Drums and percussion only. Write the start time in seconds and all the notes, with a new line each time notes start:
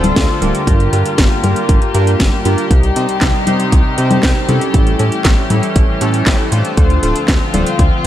0.04 closed hi-hat, high conga
0.16 kick, snare, closed hi-hat
0.42 closed hi-hat, high conga
0.55 closed hi-hat
0.67 kick, closed hi-hat
0.80 closed hi-hat
0.93 closed hi-hat
1.06 closed hi-hat
1.18 kick, snare, closed hi-hat
1.44 closed hi-hat, high conga
1.56 closed hi-hat
1.69 kick, closed hi-hat
1.82 closed hi-hat
1.94 closed hi-hat
2.07 closed hi-hat
2.20 kick, snare, closed hi-hat
2.45 closed hi-hat
2.58 closed hi-hat
2.71 kick, closed hi-hat
2.83 closed hi-hat
2.96 closed hi-hat
3.09 closed hi-hat
3.21 kick, snare, clap, closed hi-hat
3.47 closed hi-hat, high conga
3.60 closed hi-hat
3.72 kick, closed hi-hat
3.98 closed hi-hat
4.11 closed hi-hat, high conga
4.23 kick, snare, clap, closed hi-hat
4.49 closed hi-hat, high conga
4.61 closed hi-hat
4.74 kick, closed hi-hat
4.87 closed hi-hat
4.99 closed hi-hat
5.12 closed hi-hat
5.25 kick, snare, clap, closed hi-hat
5.50 closed hi-hat, high conga
5.63 closed hi-hat
5.76 kick, closed hi-hat
6.01 closed hi-hat
6.14 closed hi-hat
6.27 kick, snare, clap, closed hi-hat
6.52 closed hi-hat
6.65 closed hi-hat
6.77 kick, closed hi-hat
6.90 closed hi-hat
7.03 closed hi-hat
7.16 closed hi-hat
7.28 kick, snare, clap, closed hi-hat
7.54 closed hi-hat, high conga
7.66 closed hi-hat
7.79 kick, closed hi-hat